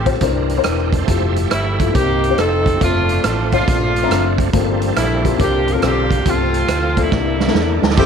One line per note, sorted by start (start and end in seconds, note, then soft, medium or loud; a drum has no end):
0.00 0.14 A1 medium
0.00 0.19 F3 medium
0.00 0.19 A3 soft
0.00 0.17 C4 medium
0.00 0.19 C4 medium
0.00 0.20 G4 medium
0.00 0.19 A4 medium
0.05 0.21 C4 medium
0.05 0.21 F4 medium
0.05 0.21 A4 medium
0.05 0.21 C5 medium
0.05 kick medium
0.05 closed hi-hat medium
0.14 cross-stick soft
0.20 0.58 C2 medium
0.20 0.90 C3 medium
0.20 1.06 E3 medium
0.20 1.06 C4 medium
0.20 1.06 D4 medium
0.20 0.53 D4 medium
0.20 0.53 E4 medium
0.20 0.62 A#4 medium
0.20 0.53 A#4 medium
0.20 0.54 C5 medium
0.20 kick medium
0.20 closed hi-hat medium
0.49 closed hi-hat medium
0.57 0.96 D4 medium
0.57 0.97 E4 medium
0.57 0.97 A#4 medium
0.57 0.97 C5 medium
0.63 1.02 E1 medium
0.63 0.91 G4 soft
0.63 0.91 A#4 medium
0.63 cross-stick loud
0.63 closed hi-hat medium
0.79 cross-stick soft
0.93 1.34 A4 medium
0.93 1.34 C5 medium
0.93 kick medium
0.93 closed hi-hat medium
1.05 1.45 F1 medium
1.05 1.91 F3 medium
1.05 1.92 A3 medium
1.05 1.53 E4 medium
1.05 1.53 F4 medium
1.05 1.91 G4 medium
1.05 1.53 G4 medium
1.05 1.53 A4 medium
1.05 1.91 E5 medium
1.05 kick medium
1.05 closed hi-hat medium
1.36 closed hi-hat medium
1.51 1.88 G1 medium
1.51 1.92 G3 medium
1.51 1.92 A3 medium
1.51 1.92 E4 medium
1.51 cross-stick loud
1.51 closed hi-hat medium
1.79 1.94 E4 medium
1.79 1.94 F4 medium
1.79 1.94 G4 medium
1.79 1.94 A4 medium
1.79 kick medium
1.79 closed hi-hat medium
1.93 2.32 C2 medium
1.93 2.35 C3 medium
1.93 2.37 D#3 medium
1.93 2.37 A#3 medium
1.93 2.36 A#3 medium
1.93 2.37 C4 medium
1.93 2.26 C4 medium
1.93 2.26 D#4 medium
1.93 2.35 D#4 medium
1.93 2.37 G4 medium
1.93 2.26 G4 medium
1.93 2.35 G4 medium
1.93 2.26 A#4 medium
1.93 kick loud
1.93 closed hi-hat medium
2.24 closed hi-hat medium
2.29 2.37 C4 medium
2.29 2.36 D#4 medium
2.29 2.37 G4 medium
2.29 2.38 C5 medium
2.37 2.74 F1 medium
2.37 2.79 F3 medium
2.37 2.79 A3 medium
2.37 2.79 C4 medium
2.37 2.75 D#4 medium
2.37 2.81 D#4 medium
2.37 2.79 D#4 medium
2.37 2.75 F4 medium
2.37 2.45 F#4 soft
2.37 2.76 G4 medium
2.37 2.75 A4 medium
2.37 2.82 A4 medium
2.37 cross-stick loud
2.37 closed hi-hat medium
2.43 2.83 G4 medium
2.66 kick medium
2.66 closed hi-hat medium
2.81 3.18 F1 medium
2.81 4.50 F3 medium
2.81 4.50 A3 medium
2.81 3.52 A3 medium
2.81 3.26 C4 medium
2.81 4.50 C4 medium
2.81 3.26 D4 medium
2.81 4.50 D4 soft
2.81 3.53 D4 medium
2.81 3.22 F4 medium
2.81 3.26 A4 medium
2.81 3.26 E5 medium
2.81 kick medium
2.81 closed hi-hat medium
3.09 closed hi-hat medium
3.24 3.61 A1 medium
3.24 3.51 F4 medium
3.24 cross-stick loud
3.24 closed hi-hat medium
3.52 4.35 A3 medium
3.52 3.88 C4 medium
3.52 3.88 D4 medium
3.52 4.36 D4 medium
3.52 4.36 F4 medium
3.52 3.88 C5 medium
3.52 3.88 E5 medium
3.52 kick medium
3.52 closed hi-hat medium
3.60 cross-stick soft
3.68 4.04 A#1 medium
3.68 kick loud
3.68 closed hi-hat medium
3.96 closed hi-hat medium
4.02 4.42 C4 medium
4.02 4.42 D4 medium
4.02 4.42 E5 medium
4.02 4.42 A#5 medium
4.10 4.47 F#1 medium
4.10 cross-stick loud
4.10 closed hi-hat medium
4.38 kick medium
4.38 closed hi-hat medium
4.53 4.90 G1 medium
4.53 5.21 G2 medium
4.53 5.38 F3 medium
4.53 5.38 G3 medium
4.53 4.98 A#3 medium
4.53 4.98 C4 medium
4.53 5.38 C4 medium
4.53 4.98 F4 medium
4.53 4.60 G#4 medium
4.53 4.99 A4 medium
4.53 kick loud
4.53 closed hi-hat medium
4.59 5.41 A4 medium
4.82 closed hi-hat medium
4.96 5.33 A#1 medium
4.96 5.37 A3 medium
4.96 5.37 A#3 medium
4.96 5.37 E4 medium
4.96 cross-stick loud
4.96 closed hi-hat medium
5.24 5.39 A#3 medium
5.24 5.36 C4 medium
5.24 5.37 F4 medium
5.24 5.40 G4 medium
5.24 kick medium
5.24 closed hi-hat medium
5.38 5.76 C2 medium
5.38 6.07 C3 medium
5.38 6.24 D3 medium
5.38 6.24 A#3 medium
5.38 5.83 A#3 medium
5.38 5.70 C4 medium
5.38 6.24 C4 medium
5.38 5.70 D4 medium
5.38 5.83 D4 medium
5.38 5.47 E4 medium
5.38 5.70 F4 medium
5.38 5.69 G4 medium
5.38 5.71 A#4 medium
5.38 kick loud
5.38 closed hi-hat medium
5.44 6.26 F4 medium
5.68 5.83 A#4 medium
5.68 closed hi-hat medium
5.74 6.14 C4 medium
5.74 6.14 D4 medium
5.74 6.14 F4 medium
5.74 6.14 A4 medium
5.82 6.19 B1 medium
5.82 6.24 A#3 medium
5.82 6.24 D4 medium
5.82 6.27 G4 medium
5.82 cross-stick loud
5.82 closed hi-hat medium
6.11 kick medium
6.11 closed hi-hat medium
6.25 6.62 C2 medium
6.25 6.93 C3 medium
6.25 7.11 F3 medium
6.25 6.70 A3 medium
6.25 7.10 A3 medium
6.25 7.09 A3 medium
6.25 6.70 C4 medium
6.25 7.11 C4 medium
6.25 7.09 C4 medium
6.25 6.71 F4 medium
6.25 6.99 F4 loud
6.25 6.33 G4 medium
6.25 6.33 G4 soft
6.25 kick medium
6.25 closed hi-hat medium
6.31 6.73 A4 medium
6.31 7.10 A4 medium
6.54 closed hi-hat medium
6.68 7.05 D2 medium
6.68 cross-stick loud
6.68 closed hi-hat medium
6.96 7.79 G3 medium
6.96 7.12 A3 medium
6.96 7.79 A#3 medium
6.96 7.12 C4 medium
6.96 7.84 E4 medium
6.96 7.12 F4 medium
6.96 7.11 A4 medium
6.96 kick medium
6.96 closed hi-hat medium
7.11 7.49 C2 medium
7.11 7.79 C3 medium
7.11 7.18 D#3 soft
7.11 7.96 A#3 medium
7.11 7.43 A#3 medium
7.11 7.96 D4 medium
7.11 7.43 D4 medium
7.11 7.43 E4 medium
7.11 7.96 A4 medium
7.11 7.43 A4 medium
7.11 kick loud
7.11 snare medium
7.17 7.99 E3 medium
7.40 snare medium
7.47 7.86 A#3 medium
7.47 7.86 D4 medium
7.47 7.87 E4 medium
7.47 7.87 A4 medium
7.47 snare medium
7.54 7.79 E2 medium
7.54 7.82 D5 medium
7.54 snare medium
7.83 7.95 D2 medium
7.83 7.97 A5 medium
7.83 snare medium
7.90 snare medium
7.96 8.06 F1 loud
7.96 8.06 F3 medium
7.96 8.06 A3 medium
7.96 8.06 C4 medium
7.96 8.06 E4 medium
7.96 8.06 G4 loud
7.96 8.06 A4 medium
7.96 kick loud
7.96 crash loud